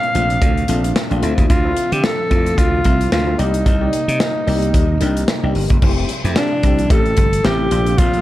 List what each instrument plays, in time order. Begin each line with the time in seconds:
Already playing: string machine A#2 C3 A3 D4, alto saxophone F5
0.03 closed hi-hat
0.14 slap bass A#1, analog polysynth A3 C4 D4 F4, closed hi-hat
0.30 closed hi-hat
0.42 slap bass D2, kick, closed hi-hat
0.57 closed hi-hat
0.68 slap bass A#1, analog polysynth A3 C4 D4 F4, closed hi-hat
0.84 closed hi-hat
0.96 snare
1.10 slap bass A#1, analog polysynth A3 C4 D4 F4, closed hi-hat
1.22 slap bass D2, string machine C3 F3 E5, analog polysynth A3 C4 E4 F4, closed hi-hat
1.38 slap bass D#2, kick, closed hi-hat
1.50 slap bass D2, alto saxophone F4, kick, closed hi-hat
1.64 analog polysynth A3 C4 E4 F4
1.77 closed hi-hat
1.92 slap bass D3, alto saxophone G4, closed hi-hat
2.04 alto saxophone A4, snare
2.30 slap bass F2, analog polysynth A3 C4 E4 F4, kick, closed hi-hat
2.46 closed hi-hat
2.58 slap bass D2, alto saxophone F4, kick, closed hi-hat
2.85 slap bass C2, analog polysynth A3 C4 E4 F4, kick, closed hi-hat
3.01 closed hi-hat
3.12 slap bass D2, alto saxophone F4, snare
3.27 analog polysynth A3 C4 E4 F4
3.38 slap bass C2, string machine G3 A#3 D#4, analog polysynth A#3 D#4 G4 D5, alto saxophone D#4, closed hi-hat
3.54 closed hi-hat
3.66 slap bass C2, kick, closed hi-hat
3.81 analog polysynth A#3 D#4 G4 D5
3.93 closed hi-hat
4.08 slap bass C3, closed hi-hat
4.20 snare
4.47 slap bass C2, analog polysynth A#3 D#4 G4 D5, open hi-hat
4.62 closed hi-hat
4.74 slap bass D#2, kick, closed hi-hat
5.01 slap bass C2, analog polysynth A#3 D4 D#4 G4, closed hi-hat
5.17 closed hi-hat
5.28 snare
5.43 slap bass C2, analog polysynth A#3 D4 D#4 G4
5.55 slap bass G1, open hi-hat
5.70 slap bass F#1, kick, closed hi-hat
5.82 slap bass F1, string machine C3 F3 A3 E4, analog polysynth A3 C4 E4 G4, kick, crash
6.09 closed hi-hat
6.24 slap bass F2, analog polysynth A3 C4 E4 G4, closed hi-hat
6.36 alto saxophone D4, snare
6.63 slap bass C2, analog polysynth A3 C4 E4 G4, kick, closed hi-hat
6.79 closed hi-hat
6.90 slap bass A1, analog polysynth A3 C4 E4 G4, alto saxophone A4, kick, closed hi-hat
7.06 closed hi-hat
7.17 slap bass G1, kick, closed hi-hat
7.33 closed hi-hat
7.44 slap bass A1, analog polysynth A3 C4 E4 G4, alto saxophone G4, snare
7.71 slap bass A#1, string machine A#2 D4, analog polysynth A3 C4 D4 F4, closed hi-hat
7.86 closed hi-hat
7.98 slap bass A#1, alto saxophone F4, kick, closed hi-hat
8.13 closed hi-hat